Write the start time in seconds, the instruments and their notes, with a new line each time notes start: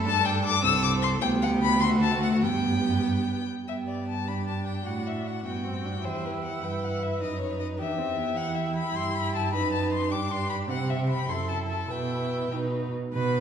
Already playing: violin A4
0.05 cello G2, viola D4, violin A5
0.25 violin G5
0.45 violin D6
0.63 cello C2, viola C4, violin A4 E6
0.83 violin D6
1.02 violin C6
1.21 cello D2, viola B3, violin G4 G5
1.42 violin F#5
1.62 violin B5
1.81 viola A3, violin F#4 C6
2.01 violin A5
2.23 violin F#5
2.33 violin F#5
2.42 cello G2, viola B3, violin G4 G5
3.68 cello G2, viola B3, violin G4 E5
3.88 violin D5
4.08 violin A5
4.27 viola D4, violin G4 B5
4.47 violin A5
4.67 violin G5
4.86 cello A2, violin F#4 F#5
5.07 violin E5
5.27 violin F#5
5.45 cello G2, viola B3, violin G5
5.65 viola C4
5.85 viola D4
6.04 cello E2, viola E4, violin G4 C5
6.25 violin B4
6.44 violin F#5
6.63 cello G2, violin B4 G5
6.84 violin F#5
7.03 violin E5
7.21 cello F#2, viola D#4, violin D#5
7.41 violin C#5
7.60 violin D#5
7.78 cello E2, viola D4, violin G4 E5
7.99 viola C4
8.18 viola B3
8.37 cello E2, viola E4, violin F#5
8.55 violin E5
8.75 violin B5
8.94 cello G2, violin G4 C6
9.14 violin B5
9.35 violin A5
9.53 cello F#2, viola D#4, violin B4 B5
9.72 violin A5
9.92 violin C6
10.11 cello G2, viola D4, violin G4 D6
10.31 violin C6
10.49 violin B5
10.68 cello C3, viola C4, violin G4 F#5
10.90 violin E5
11.09 violin B5
11.28 cello F#2, viola E4, violin A4 C6
11.49 violin A5
11.69 violin A5
11.89 cello B2, viola E4, violin B4 G5
12.52 cello B2, viola D#4, violin B4
13.14 cello B2, viola B4, violin B4 B5